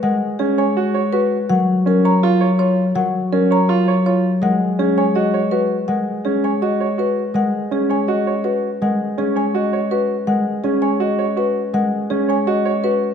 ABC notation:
X:1
M:4/4
L:1/8
Q:1/4=164
K:G#dor
V:1 name="Marimba"
f z G g z2 B z | f z A a z2 c z | f z A a z2 c z | f z G g d z B z |
f z G g d z B z | f z G g d z B z | f z G g d z B z | f z G g d z B z |
f z G g d z B z |]
V:2 name="Grand piano"
z2 C c F c F z | z2 C c E c E z | z2 C c E c E z | z2 C c F c F z |
z2 C c F c F z | z2 C c F c F z | z2 C c F c F z | z2 C c F c F z |
z2 C c F c F z |]
V:3 name="Harp" clef=bass
G,8 | F,8 | F,8 | G,8 |
G,8 | G,2 C6 | G,2 C6 | G,2 C6 |
G,2 C6 |]